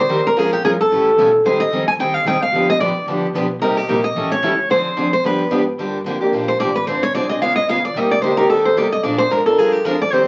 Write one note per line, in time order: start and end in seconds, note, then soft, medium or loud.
0.00 0.26 C5 medium
0.08 0.35 D#2 medium
0.08 0.19 D#3 medium
0.08 0.20 G3 loud
0.08 0.20 C4 medium
0.08 0.20 G4 medium
0.08 0.20 A#4 loud
0.08 0.20 C5 loud
0.27 0.38 A#4 medium
0.35 0.62 F2 medium
0.35 0.55 F3 medium
0.35 0.55 G#3 medium
0.35 0.55 C#4 medium
0.35 0.55 F4 medium
0.35 0.52 G#4 medium
0.35 0.55 A#4 medium
0.53 0.64 G4 loud
0.63 0.89 G2 medium
0.63 0.74 F3 medium
0.63 0.74 G#3 medium
0.63 0.74 C#4 medium
0.63 0.74 F4 medium
0.63 0.70 G#4 medium
0.63 0.74 A#4 medium
0.81 1.30 A4 medium
0.90 1.16 A2 medium
0.90 1.10 C#3 medium
0.90 1.09 E3 medium
0.90 1.09 G3 medium
0.90 1.10 A3 medium
0.90 1.10 C#4 medium
0.90 1.10 E4 medium
0.90 1.10 G4 medium
0.90 1.10 A4 medium
1.17 1.43 B2 medium
1.17 1.28 C#3 medium
1.17 1.28 E3 medium
1.17 1.28 G3 medium
1.17 1.28 A3 medium
1.17 1.28 C#4 medium
1.17 1.28 E4 medium
1.17 1.29 G4 medium
1.17 1.28 A4 medium
1.44 1.70 G#2 medium
1.44 1.63 D#3 medium
1.44 1.64 G3 medium
1.44 1.64 C4 medium
1.44 1.64 D#4 medium
1.44 1.64 G#4 medium
1.44 1.59 C5 medium
1.60 1.85 D#5 loud
1.71 1.96 F2 medium
1.71 1.82 D#3 medium
1.71 1.82 G3 medium
1.71 1.83 C4 medium
1.71 1.83 D#4 medium
1.71 1.83 G#4 medium
1.88 1.93 G#5 medium
1.97 2.23 D#2 medium
1.97 2.17 D#3 medium
1.97 2.18 G3 medium
1.97 2.18 C4 medium
1.97 2.18 D#4 medium
1.97 2.18 G#4 medium
1.97 2.14 G5 medium
2.14 2.26 F5 medium
2.24 2.51 C2 medium
2.24 2.36 D#3 medium
2.24 2.36 G3 medium
2.24 2.36 C4 medium
2.24 2.37 D#4 loud
2.24 2.37 G#4 medium
2.24 2.42 G5 loud
2.42 2.67 F5 medium
2.52 2.79 G1 medium
2.52 2.72 D3 medium
2.52 2.72 F3 medium
2.52 2.72 B3 medium
2.52 2.72 D4 medium
2.52 2.73 G4 medium
2.70 2.80 D#5 loud
2.79 2.93 G#1 medium
2.79 2.91 D3 medium
2.79 2.91 F3 medium
2.79 2.91 B3 medium
2.79 2.91 D4 medium
2.79 2.91 G4 medium
2.79 3.06 D5 medium
3.06 3.32 G1 medium
3.06 3.26 D3 medium
3.06 3.26 F3 medium
3.06 3.26 B3 medium
3.06 3.26 D4 medium
3.06 3.26 G4 medium
3.33 3.59 B1 medium
3.33 3.45 D3 medium
3.33 3.45 F3 medium
3.33 3.45 B3 medium
3.33 3.45 D4 loud
3.33 3.45 G4 loud
3.59 3.86 C2 medium
3.59 3.80 C3 medium
3.59 3.80 G3 medium
3.59 3.80 A#3 medium
3.59 3.80 D#4 medium
3.59 3.80 G4 medium
3.59 3.77 A#4 medium
3.77 4.05 G4 loud
3.87 4.14 A#1 medium
3.87 3.99 C3 medium
3.87 3.99 G3 medium
3.87 3.99 A#3 medium
3.87 3.99 D#4 medium
3.87 3.99 G4 medium
4.04 4.29 D#5 medium
4.15 4.41 A1 medium
4.15 4.34 E3 medium
4.15 4.34 G3 medium
4.15 4.34 C#4 medium
4.15 4.34 E4 medium
4.15 4.35 A4 medium
4.32 4.70 C#5 loud
4.42 4.69 C#2 medium
4.42 4.53 E3 medium
4.42 4.53 G3 medium
4.42 4.53 C#4 medium
4.42 4.53 E4 medium
4.42 4.53 A4 loud
4.69 4.96 D2 medium
4.69 4.88 D3 medium
4.69 4.88 F3 medium
4.69 4.88 C4 medium
4.69 4.88 D4 medium
4.69 4.88 G#4 medium
4.69 5.12 C5 medium
4.97 5.22 F2 medium
4.97 5.07 D3 medium
4.97 5.07 F3 medium
4.97 5.07 C4 medium
4.97 5.07 D4 medium
4.97 5.07 G#4 medium
5.13 5.25 C5 medium
5.23 5.49 G2 medium
5.23 5.42 D3 medium
5.23 5.42 F3 medium
5.23 5.43 B3 medium
5.23 5.43 D4 medium
5.23 5.43 G4 medium
5.23 5.64 B4 medium
5.50 5.77 G#2 medium
5.50 5.61 D3 medium
5.50 5.61 F3 medium
5.50 5.61 B3 medium
5.50 5.61 D4 medium
5.50 5.61 G4 medium
5.78 6.04 G2 medium
5.78 5.97 D3 medium
5.78 5.97 F3 medium
5.78 5.97 A#3 medium
5.78 5.97 D4 medium
5.78 5.97 G4 medium
6.04 6.31 F2 medium
6.04 6.16 D3 medium
6.04 6.16 F3 medium
6.04 6.16 A#3 medium
6.04 6.16 D4 medium
6.04 6.16 G4 medium
6.21 6.33 A#3 soft
6.21 6.33 D4 soft
6.21 6.32 G4 medium
6.32 6.58 A#1 medium
6.32 6.51 D3 medium
6.32 6.51 F3 medium
6.32 6.51 A#3 medium
6.32 6.51 D4 medium
6.32 6.51 G4 medium
6.48 6.59 C5 medium
6.59 6.85 A1 medium
6.59 6.70 D3 medium
6.59 6.70 F3 medium
6.59 6.70 A#3 medium
6.59 6.70 D4 medium
6.59 6.70 G4 loud
6.59 6.74 D5 medium
6.75 6.87 B4 medium
6.86 7.12 G#1 medium
6.86 7.05 D3 medium
6.86 7.05 F3 medium
6.86 7.05 C4 medium
6.86 7.05 D4 medium
6.86 7.06 G#4 medium
6.86 7.01 C5 medium
7.03 7.14 C#5 loud
7.13 7.40 C2 medium
7.13 7.25 D3 medium
7.13 7.25 F3 medium
7.13 7.25 C4 medium
7.13 7.25 D4 medium
7.13 7.25 G#4 medium
7.13 7.29 D5 medium
7.29 7.42 C4 soft
7.29 7.41 D4 soft
7.29 7.41 G#4 medium
7.29 7.41 D#5 medium
7.41 7.67 C#2 medium
7.41 7.60 C#3 medium
7.41 7.60 G#3 medium
7.41 7.60 B3 medium
7.41 7.60 F4 medium
7.41 7.60 G#4 medium
7.41 7.55 F5 medium
7.56 7.67 D#5 medium
7.68 7.94 D#2 medium
7.68 7.77 C#3 medium
7.68 7.78 G#3 medium
7.68 7.78 B3 medium
7.68 7.78 F4 medium
7.68 7.78 G#4 medium
7.68 7.83 F5 medium
7.85 7.97 D5 medium
7.94 8.21 C2 medium
7.94 8.14 C3 medium
7.94 8.14 G3 medium
7.94 8.14 A#3 medium
7.94 8.14 D#4 medium
7.94 8.14 G4 medium
7.94 8.11 D#5 medium
8.11 8.21 D5 medium
8.22 8.48 D2 loud
8.22 8.32 C3 medium
8.22 8.32 G3 medium
8.22 8.32 A#3 medium
8.22 8.32 D#4 medium
8.22 8.32 G4 medium
8.22 8.37 C5 medium
8.37 8.49 A#3 soft
8.37 8.49 D#4 medium
8.37 8.49 G4 medium
8.37 8.49 A#4 medium
8.49 8.75 D#2 medium
8.49 8.68 C3 medium
8.49 8.68 G3 medium
8.49 8.68 A#3 medium
8.49 8.68 D#4 medium
8.49 8.68 G4 medium
8.49 8.64 A4 medium
8.65 8.77 C5 medium
8.75 9.02 G2 medium
8.75 8.86 C3 medium
8.75 8.86 G3 medium
8.75 8.86 A#3 medium
8.75 8.86 D#4 loud
8.75 8.86 G4 medium
8.75 8.92 D5 medium
8.92 9.03 D#5 medium
9.03 9.29 A#2 medium
9.03 9.22 F3 medium
9.03 9.22 G#3 medium
9.03 9.22 D4 medium
9.03 9.22 F4 medium
9.03 9.22 A#4 medium
9.03 9.18 D5 medium
9.18 9.30 C5 loud
9.30 9.56 G#2 medium
9.30 9.39 F3 medium
9.30 9.40 G#3 medium
9.30 9.40 D4 medium
9.30 9.40 F4 medium
9.30 9.40 A#4 medium
9.30 9.46 A#4 medium
9.46 9.58 D4 soft
9.46 9.58 F4 medium
9.46 9.58 A4 medium
9.46 9.58 A#4 soft
9.57 9.84 G2 medium
9.57 9.76 F3 medium
9.57 9.77 G#3 medium
9.57 9.77 D4 medium
9.57 9.77 F4 medium
9.57 9.72 G#4 medium
9.57 9.77 A#4 medium
9.72 9.85 G4 medium
9.84 10.11 F2 medium
9.84 9.94 F3 medium
9.84 9.94 G#3 medium
9.84 9.94 D4 medium
9.84 9.94 F4 medium
9.84 10.00 A#4 medium
9.84 9.95 A#4 medium
10.02 10.13 D5 medium
10.12 10.28 D#2 medium
10.12 10.28 D#3 medium
10.12 10.28 G3 medium
10.12 10.28 C4 medium
10.12 10.28 G4 medium
10.12 10.22 C5 medium
10.12 10.28 C5 medium